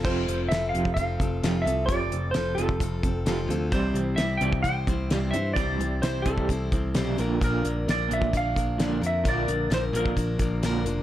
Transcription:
<<
  \new Staff \with { instrumentName = "Electric slide guitar" } { \time 4/4 \key f \lydian \tempo 4 = 130 c''4 e''8 f''8 f''4. e''8 | d''4 c''8 a'2 r8 | c''4 e''8 g''8 g''4. e''8 | d''4 c''8 a'2 r8 |
bes'4 d''8 e''8 f''4. e''8 | d''4 c''8 bes'2 r8 | }
  \new Staff \with { instrumentName = "Steel-string acoustic guitar" } { \time 4/4 \key f \lydian <f c' f' a'>4 <f c' f' a'>4 <f c' f' a'>8 <c' f' a'>8 <f c' f' a'>8 <c' f' a'>8 | <f c' f' a'>4 <f c' f' a'>4 <f c' f' a'>8 <c' f' a'>8 <f c' f' a'>8 <c' f' a'>8 | <c g c' e' c''>4 <c g c' e' c''>4 <g c' e' c''>8 <c' e' c''>8 <c g c' e' c''>8 <c' e' c''>8 | <c g c' e' c''>4 <c g c' e' c''>4 <g c' e' c''>8 <c' e' c''>8 <c g c' e' c''>8 <f bes d' bes'>8 |
<bes, d f bes d' bes'>4 <bes, d f bes d' bes'>4 <f bes d' bes'>8 <f bes d' bes'>8 <bes, d f bes d' bes'>8 <f bes d' bes'>8 | <bes, d f bes d' bes'>4 <bes, d f bes d' bes'>4 <f bes d' bes'>8 <f bes d' bes'>8 <bes, d f bes d' bes'>8 <f bes d' bes'>8 | }
  \new Staff \with { instrumentName = "Clean electric guitar" } { \clef bass \time 4/4 \key f \lydian <f, c f>8 f,8 <f, c>8 <f, c f>8 <f, c>8 <f, c>8 <f, c f>8 <f, c>8 | <f, c f>8 <f, c>8 <f, c>8 <f, c f>8 <f, c>8 <f, c>8 <f, c f>8 <f, c>8 | <c e g>8 <c e>8 <c e>8 <c e g>8 <c e>8 <c e>8 <c e g>8 <c e>8 | <c e g>8 <c e>8 <c e>8 <c e g>8 <c e>8 <c e>8 <c e g>8 <bes, d bes>8 |
<bes, d bes>8 <bes, d>8 <bes, d>8 <bes, d bes>8 <bes, d>8 <bes, d>8 <bes, d bes>8 <bes, d>8 | <bes, d bes>8 <bes, d>8 <bes, d>8 <bes, d bes>8 d8 <bes, d>8 <bes, d bes>8 <bes, d>8 | }
  \new Staff \with { instrumentName = "Picked electric bass" } { \clef bass \time 4/4 \key f \lydian f,,8 f,,8 f,,8 f,,8 f,,8 f,,8 f,,8 c,8 | f,,8 f,,8 f,,8 f,,8 f,,8 f,,8 f,,8 d,8 | c,8 c,8 c,8 c,8 c,8 c,8 c,8 g,8 | c,8 c,8 c,8 c,8 c,8 c,8 b,,8 bes,,8 |
bes,,8 bes,,8 bes,,8 bes,,8 bes,,8 bes,,8 bes,,8 f,8 | bes,,8 bes,,8 bes,,8 bes,,8 bes,,8 bes,,8 bes,,8 f,,8 | }
  \new DrumStaff \with { instrumentName = "Drums" } \drummode { \time 4/4 <cymc bd>8 hh8 <hh sn>8 hh16 bd16 <hh bd>8 <hh bd>8 <hh sn>8 hh8 | <hh bd>8 hh8 <hh sn>8 hh16 bd16 <hh bd>8 <hh bd>8 <hh sn>8 hh8 | <hh bd>8 hh8 <hh sn>8 hh16 bd16 <hh bd>8 <hh bd>8 <hh sn>8 hh8 | <hh bd>8 hh8 <hh sn>8 <hh bd>16 bd16 <hh bd>8 <hh bd>8 <hh sn>8 hh8 |
<hh bd>8 hh8 <hh sn>8 hh16 bd16 <hh bd>8 <hh bd>8 <hh sn>8 hh8 | <hh bd>8 hh8 <hh sn>8 hh16 bd16 <hh bd>8 <hh bd>8 <hh sn>8 hh8 | }
>>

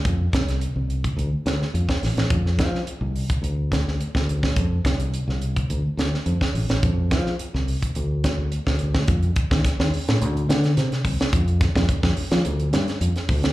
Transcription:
<<
  \new Staff \with { instrumentName = "Fingered electric bass" } { \clef bass \time 4/4 \key f \mixolydian \tempo 4 = 106 f,8 c,8. c,8. d,16 r16 d,16 r16 f,16 r16 a,,16 a,,16 | f,8 f8 r16 c,8 r16 d,4~ d,16 d,8. | f,8 c,8. c,8. d,16 r16 d,16 r16 f,16 r16 a,,16 a,,16 | f,8 f8 r16 c,8 r16 d,4~ d,16 d,8. |
f,8 r16 ees,16 r16 ees,16 r16 a,16 d,8 d8 c16 r16 c,16 r16 | f,8. f,16 r16 f,16 r16 f16 d,8 g,16 r16 f,16 r16 d,8 | }
  \new DrumStaff \with { instrumentName = "Drums" } \drummode { \time 4/4 <hh bd>8 <hh bd sn>16 <hh sn>16 hh8 hh16 <hh bd>16 hh8 <hh sn>16 sn16 hh16 <bd sn>16 <hho sn>16 <hh sn>16 | <hh bd>16 sn16 <hh bd sn>16 sn16 hh8 hho16 <hh bd>16 hh8 <hh bd sn>16 sn16 hh16 <bd sn>16 hh16 <bd sn>16 | <hh bd>8 <hh bd sn>16 hh16 hh16 sn16 hh16 <hh bd>16 hh8 <hh sn>16 sn16 hh16 <bd sn>16 hho16 <hh sn>16 | <hh bd>8 <hh bd sn>16 sn16 hh16 sn16 hho16 <hh bd>16 hh8 <hh bd sn>8 hh16 <bd sn>16 hh16 <bd sn>16 |
<hh bd>16 hh16 <hh bd>16 <bd sn>16 <hh bd sn>16 sn16 hho16 <hh sn>16 hh16 hh16 <hh sn>16 <hh sn>16 <hh sn>16 <hh sn>16 <hho bd>16 <hh sn>16 | <hh bd>16 hh16 <hh bd sn>16 <bd sn>16 <hh bd>16 <bd sn>16 hho16 <hh sn>16 hh16 hh16 <hh sn>16 <hh sn>16 hh16 <hh sn>16 <hho bd>16 <hh sn>16 | }
>>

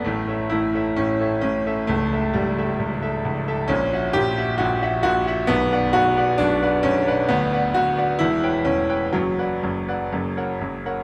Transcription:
\new Staff \with { instrumentName = "Grand piano" } { \time 4/4 \key a \mixolydian \tempo 4 = 132 << { <a,, a,>8 <a' cis'' e''>8 <a,, a,>8 <a' cis'' e''>8 <a,, a,>8 <a' cis'' e''>8 <a,, a,>8 <a' cis'' e''>8 | <cis,, cis,>8 <a' e''>8 <cis,, cis,>8 <a' e''>8 <cis,, cis,>8 <a' e''>8 <cis,, cis,>8 <a' e''>8 | \key b \minor <ais,, ais,>8 <fis' e'' fis''>8 <ais,, ais,>8 <fis' e'' fis''>8 <ais,, ais,>8 <fis' e'' fis''>8 <ais,, ais,>8 <fis' e'' fis''>8 | <b,,, b,,>8 <b' d'' fis''>8 <b,,, b,,>8 <b' d'' fis''>8 <b,,, b,,>8 <b' d'' fis''>8 <b,,, b,,>8 <b' d'' fis''>8 |
<d,, d,>8 <b' d'' fis''>8 <d,, d,>8 <b' d'' fis''>8 <e,, e,>8 <b' cis'' g''>8 <e,, e,>8 <b' cis'' g''>8 | <fis,, fis,>8 <b' d'' fis''>8 <fis,, fis,>8 <b' d'' fis''>8 <fis,, fis,>8 <ais' cis'' fis''>8 <fis,, fis,>8 <ais' cis'' fis''>8 | } \\ { a4 e'4 cis'4 cis'4 | a4 g4. r4. | cis'4 g'4 fis'4 fis'4 | b4 fis'4 d'4 cis'4 |
b4 fis'4 e'4 cis'4 | fis2.~ fis8 r8 | } >> }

